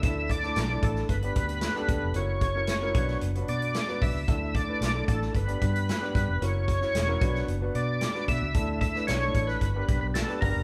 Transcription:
<<
  \new Staff \with { instrumentName = "Tonewheel organ" } { \time 4/4 \key d \major \tempo 4 = 113 e''8 d''4 a'8 b'2 | cis''2 r8 d''4 e''8 | e''8 d''4 a'8 b'2 | cis''2 r8 d''4 e''8~ |
e''8 e''8 cis''8. b'4 b'16 a'8 bes'8 | }
  \new Staff \with { instrumentName = "Grand piano" } { \time 4/4 \key d \major <a d' e' a'>8 r16 <a d' e' a'>16 r16 <a d' e' a'>8. r16 <b d' g' b'>8. r16 <b d' g' a'>8 r16 | <cis' e' fis' ais'>8 r16 <cis' e' fis' ais'>16 r16 <cis' e' fis' ais'>16 <b d' fis' b'>8 r16 <b cis' d' fis' b'>8. r16 <b d' fis' b'>8 r16 | <a d' e' a'>8 r16 <a d' e' b'>16 r16 <a d' e' a'>8. r16 <b d' g' b'>8. r16 <b d' g' b'>8 r16 | <cis' e' fis' ais'>8 r16 <cis' e' fis' cis''>16 r16 <cis' e' fis' ais'>16 <b d' fis' b'>8 r16 <b d' fis' b'>8. r16 <b d' fis' b'>8 r16 |
<a d' e' a'>8 r16 <a d' e' b'>16 r16 <a d' ees' e' a'>8. r16 <b d' g' bes' b'>8. r16 <b d' g' b'>8 r16 | }
  \new Staff \with { instrumentName = "Fingered electric bass" } { \clef bass \time 4/4 \key d \major d,4 b,,8 a,,8 g,,8 d,8. r16 d,16 f,,16 | fis,,4. b,,8 fis,,8 b,8. r16 b,,16 cis,16 | d,4 b,,8 a,,8 g,,8 g,8. r16 g,16 f,,16 | fis,,4 e,,8 b,,8 fis,,8 b,8. r16 b,16 cis,16 |
d,4 b,,8 a,,8 g,,8 b,,16 b,,8 r16 g,,16 f,,16 | }
  \new DrumStaff \with { instrumentName = "Drums" } \drummode { \time 4/4 <hh bd>8 <hh bd>16 sn16 <hh sn>8 <hh bd>16 sn16 <hh bd>16 hh16 <hh bd>16 hh16 <hh sn>16 sn16 <hh bd>8 | hh8 <hh bd>8 <hh sn>8 <hh bd>16 sn16 hh16 hh16 hh16 hh16 <hh sn>16 sn16 <hho bd>8 | <hh bd>8 <hh bd>8 <hh sn>8 <hh bd>16 sn16 <hh bd>16 hh16 <hh bd>16 hh16 <hh sn>16 sn16 <hh bd>8 | hh8 <hh bd>16 sn16 <hh sn>8 <hh bd>16 sn16 hh8 hh8 <hh sn>16 sn16 <hh bd>8 |
<hh bd>8 <hh bd>16 sn16 <hh sn>8 <hh bd>16 sn16 <hh bd>8 <hh bd>8 <hh sn>16 sn16 <hho bd>8 | }
>>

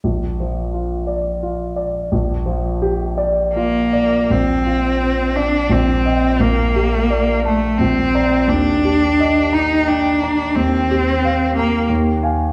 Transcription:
<<
  \new Staff \with { instrumentName = "Grand piano" } { \time 3/4 \key bes \major \tempo 4 = 86 bes,,8 f8 f'8 d''8 f'8 d''8 | bes,,8 f8 g'8 d''8 f'8 d''8 | bes,,8 f'8 c''8 d''8 bes,,8 <ees'' g''>8 | bes,,8 g'8 d''8 a''8 bes,,8 <d'' bes''>8 |
ees,8 g'8 ees''8 bes''8 g''8 bes''8 | ees,8 g'8 f''8 bes''8 ees,8 <f'' aes''>8 | }
  \new Staff \with { instrumentName = "Cello" } { \time 3/4 \key bes \major r2. | r2 bes4 | c'4. d'8 c'4 | bes4. a8 c'4 |
d'4. ees'8 d'4 | c'4. bes8 r4 | }
>>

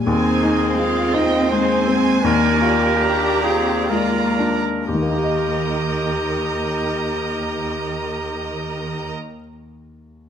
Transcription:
<<
  \new Staff \with { instrumentName = "Violin section" } { \time 3/4 \key ees \major \tempo 4 = 67 << { aes''4 f''8 g''8 aes''4~ | aes''4 bes''4 bes''8 r8 | <ees'' bes''>2.~ | <ees'' bes''>2. | } \\ { c''2. | d''4 d''4 d''8 r8 | r2. | r2. | } >> }
  \new Staff \with { instrumentName = "Clarinet" } { \time 3/4 \key ees \major aes'4. ees''8 c''4 | bes'4. aes'8 bes'4 | g'2.~ | g'2. | }
  \new Staff \with { instrumentName = "Grand piano" } { \time 3/4 \key ees \major ees,8 ees'8 f'8 ees'8 aes8 c'8 | ees,8 f'8 g'8 f'8 aes8 d'8 | <ees, ees bes ees' g' ees''>2.~ | <ees, ees bes ees' g' ees''>2. | }
  \new Staff \with { instrumentName = "Cello section" } { \time 3/4 \key ees \major c'2. | bes8 g'4. f'8 r8 | ees,2.~ | ees,2. | }
  \new Staff \with { instrumentName = "Viola section" } { \time 3/4 \key ees \major << { ees'4 f'4 ees'8 c'8 | d'8 g'4. f'8 r8 | <ees bes'>2.~ | <ees bes'>2. | } \\ { c'8 bes8 aes4 aes4 | bes4 d'8 c'8 bes8 r8 | r2. | r2. | } >> }
>>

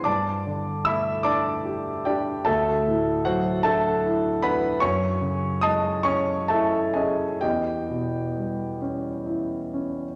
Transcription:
<<
  \new Staff \with { instrumentName = "Grand piano" } { \time 6/8 \key d \mixolydian \tempo 4. = 49 <d'' a'' d'''>4 <e'' b'' e'''>8 <d'' a'' d'''>4 <g' d'' g''>8 | <a' e'' a''>4 <fis' c'' fis''>8 <a' e'' a''>4 <b' fis'' b''>8 | \key e \major <cis'' gis'' cis'''>4 <dis'' a'' dis'''>8 <cis'' gis'' cis'''>8 <a' e'' a''>8 <gis' dis'' gis''>8 | <g' dis'' g''>4. r4. | }
  \new Staff \with { instrumentName = "Grand piano" } { \time 6/8 \key d \mixolydian g,8 d8 a8 d'8 g'8 d'8 | d,8 a,8 fis8 d'8 e'8 d'8 | \key e \major fis,8 cis8 gis8 cis'8 e'8 cis'8 | e,8 b,8 g8 cis'8 e'8 cis'8 | }
>>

